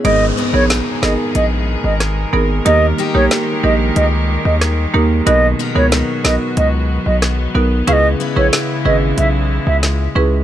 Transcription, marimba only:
X:1
M:4/4
L:1/16
Q:1/4=92
K:G#m
V:1 name="Marimba"
[B,DGA]3 [B,DGA] z2 [B,DGA] z6 z [B,DGA] z | [A,D=GA]3 [A,DGA] z2 [A,DGA] z6 z [A,DGA] z | [B,DFA]3 [B,DFA] z2 [B,DFA] z6 z [B,DFA] z | [CEGB]3 [CEGB] z2 [CEGB] z6 z [CEGB] z |]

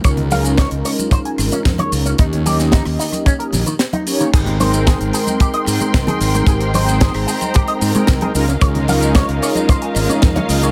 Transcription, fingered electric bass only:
X:1
M:4/4
L:1/16
Q:1/4=112
K:Ab
V:1 name="Fingered electric bass" clef=bass
D,,4- D,, D,, z4 A,,, z F,, z D,,2 | E,,4- E,, E,, z4 B,,, z4 z | A,,,4- A,,, A,,, z4 A,, z C,, z A,,,2 | A,,,4- A,,, A,,, z4 A,, z C,, z D,,2 |
D,,4- D,, D,, z4 A,,, z F,, z D,,2 |]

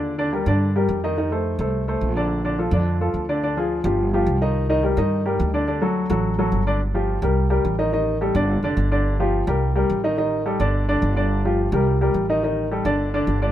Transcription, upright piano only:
X:1
M:4/4
L:1/8
Q:1/4=213
K:Gm
V:1 name="Upright piano"
[D,Dd] [D,Dd] [G,GB] [D,Dd]2 [G,GB]2 [E,Ee] | [E,Ee] [A,Ac]2 [A,Ac]2 [A,Ac]2 [D,Dd]- | [D,Dd] [D,Dd] [F,FA] [D,Dd]2 [F,FA]2 [D,Dd] | [D,Dd] [F,F_A]2 [F,FG]2 [F,FG]2 [E,Ee]- |
[E,Ee] [E,Ee] [G,GB] [E,Ee]2 [G,GB]2 [D,Dd] | [D,Dd] [^F,^FA]2 [F,FA]2 [F,FA]2 [D,Dd] | z [F,FG]2 [G,GB]2 [G,GB]2 [E,Ee] | [E,Ee]2 [G,GA] [D,Dd]2 [D,Dd]2 [D,Dd]- |
[D,Dd] [F,FG]2 [G,GB]2 [G,GB]2 [E,Ee] | [E,Ee]2 [G,GA] [D,Dd]2 [D,Dd]2 [D,Dd]- | [D,Dd] [F,FG]2 [G,GB]2 [G,GB]2 [E,Ee] | [E,Ee]2 [G,GA] [D,Dd]2 [D,Dd]2 [D,Dd] |]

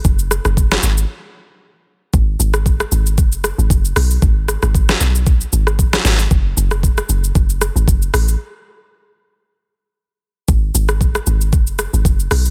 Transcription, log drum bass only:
X:1
M:4/4
L:1/16
Q:"Swing 16ths" 1/4=115
K:G#phr
V:1 name="Log drum bass" clef=bass
F,,,3 F,,,3 G,,,2 z8 | G,,,2 G,,,4 G,,,2 F,,,3 G,,, F,,,2 B,,,2 | G,,,3 G,,,3 B,,,4 G,,,4 G,,,2 | F,,,2 F,,,4 F,,,2 F,,,3 G,,, F,,,2 A,,,2 |
z16 | G,,,2 G,,,4 G,,,2 F,,,3 G,,, F,,,2 B,,,2 |]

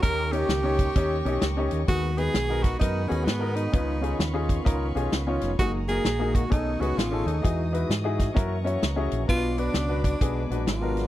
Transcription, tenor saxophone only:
X:1
M:4/4
L:1/8
Q:"Swing" 1/4=130
K:F#
V:1 name="Tenor saxophone"
A =G6 z | F G2 F D C B, D- | D2 z6 | F G2 F D F E D- |
D2 z6 | E =D2 D2 z E2 |]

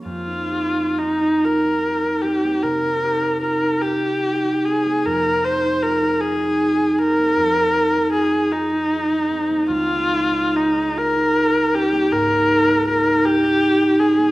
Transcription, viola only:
X:1
M:12/8
L:1/8
Q:3/8=51
K:Fm
V:1 name="Viola"
F2 E B2 G B2 B G2 A | B c B A2 B3 A E3 | F2 E B2 G B2 B G2 A |]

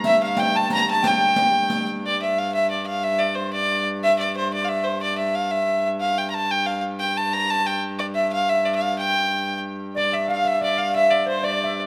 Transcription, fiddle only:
X:1
M:6/8
L:1/16
Q:3/8=121
K:Gdor
V:1 name="Fiddle"
e2 f2 g2 a2 b2 a2 | g8- g2 z2 | d2 e2 f2 e2 d2 f2 | e2 d2 c2 d4- d/2 z3/2 |
e2 d2 c2 d3/2 f/2 e2 c2 | d2 e2 f2 e4- e/2 z3/2 | f2 g3/2 b/2 a2 g2 f2 z2 | g2 a2 b2 a2 g2 z2 |
d2 e2 f2 e2 d e f2 | g8 z4 | d2 e2 f2 e2 d2 f2 | e2 d2 c2 d4- d/2 z3/2 |]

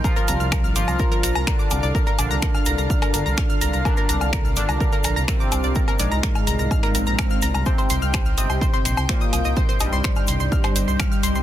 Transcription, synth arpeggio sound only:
X:1
M:4/4
L:1/16
Q:1/4=126
K:Bbmix
V:1 name="Synth arpeggio sound"
[Bb] [Bb] [bb'] f' [Bb] f' d' [bb'] [Bb] [Bb] [bb'] [bb'] [Bb] d' d' [dd'] | [Bb] [Bb] [dd'] [bb'] [Bb] f' [bb'] [bb'] f' [Bb] [Bb] [bb'] f' f' [bb'] [bb'] | [Bb] [Bb] [bb'] f' [Bb] f' d' [bb'] [Bb] [Bb] [bb'] [bb'] [Bb] d' d' [dd'] | [Bb] [Bb] [dd'] [bb'] [Bb] f' [bb'] [bb'] f' [Bb] [Bb] [bb'] f' f' [bb'] [bb'] |
[cc'] [cc'] c' f' [cc'] f' e' c' [cc'] [cc'] c' c' [cc'] e' e' [ee'] | [cc'] [cc'] [ee'] c' [cc'] f' c' c' f' [cc'] [cc'] c' f' f' c' c' |]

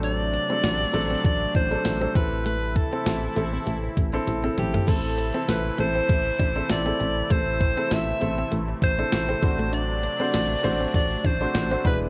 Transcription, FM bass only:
X:1
M:4/4
L:1/8
Q:"Swing 16ths" 1/4=99
K:Ador
V:1 name="FM bass" clef=bass
A,,,2 A,,, A,,, A,,, A,,, A,,, A,,,- | A,,,2 A,,, A,,, A,,, A,,, A,,, A,,, | A,,,2 A,,, A,,, A,,, A,,, A,,, A,,, | A,,,2 A,,, A,,, A,,, A,,, A,,, A,,,- |
A,,,2 A,,, A,,, A,,, A,,, A,,, E,,, |]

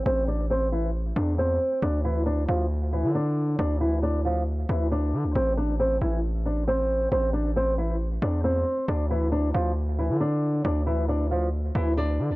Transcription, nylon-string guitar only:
X:1
M:4/4
L:1/8
Q:1/4=136
K:Ddor
V:1 name="Nylon-string guitar"
[Cc] [Dd] [Cc] [E,E] z [Dd] [Cc]2 | [Dd] [E,E] [Dd] [F,F] z [E,E] [Dd]2 | [Dd] [E,E] [Dd] [F,F] z [E,E] [Dd]2 | [Cc] [Dd] [Cc] [E,E] z [Dd] [Cc]2 |
[Cc] [Dd] [Cc] [E,E] z [Dd] [Cc]2 | [Dd] [E,E] [Dd] [F,F] z [E,E] [Dd]2 | [Dd] [E,E] [Dd] [F,F] z [E,E] [Dd]2 |]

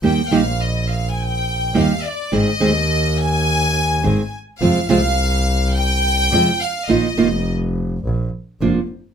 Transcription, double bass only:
X:1
M:4/4
L:1/8
Q:1/4=105
K:Eb
V:1 name="Double bass" clef=bass
E,, B,,,4- B,,, E,, z | A,,, E,,4- E,, A,,, z | F,, C,,4- C,, F,, z | B,,, F,,,3 B,,, z F,,, z |]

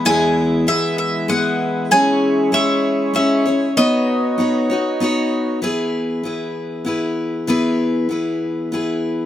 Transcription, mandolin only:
X:1
M:3/4
L:1/8
Q:1/4=97
K:E
V:1 name="Mandolin"
g2 e e f2 | g2 e2 e2 | d4 z2 | z6 |
z6 |]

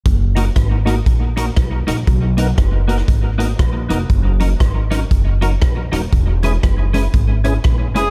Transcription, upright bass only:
X:1
M:4/4
L:1/8
Q:"Swing" 1/4=118
K:F#mix
V:1 name="Upright bass" clef=bass
F,,,2 G,,,2 A,,,2 B,,, A,,, | B,,,2 F,,,2 G,,,2 A,,, ^E,,, | F,,,2 G,,,2 F,,,2 A,,, D,,, | E,,,2 F,,,2 G,,,2 A,,, ^E,,, |]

